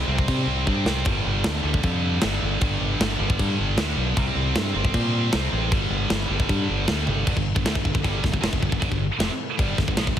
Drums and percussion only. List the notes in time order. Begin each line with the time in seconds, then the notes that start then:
0.18 kick
0.28 kick, crash
0.67 kick
0.86 snare
1.05 kick, crash
1.44 snare, crash
1.74 kick
1.83 kick, crash
2.22 snare, crash
2.61 kick, crash
3.01 snare, crash
3.30 kick
3.39 kick, crash
3.78 snare, crash
4.17 kick, crash
4.56 snare, crash
4.85 kick
4.94 kick, crash
5.33 snare, crash
5.72 kick, crash
6.10 snare, crash
6.40 kick
6.49 kick, crash
6.88 snare, crash
7.07 high tom
7.27 kick, crash
7.37 kick
7.56 kick
7.66 snare, crash
7.75 kick
7.85 kick
7.95 kick
8.04 kick, crash
8.24 kick, snare
8.34 kick
8.44 snare, crash
8.53 kick
8.63 kick
8.72 kick
8.82 kick, crash
8.92 kick
9.20 snare, crash
9.59 kick, crash
9.78 kick, snare
9.88 kick
9.97 snare, crash
10.07 kick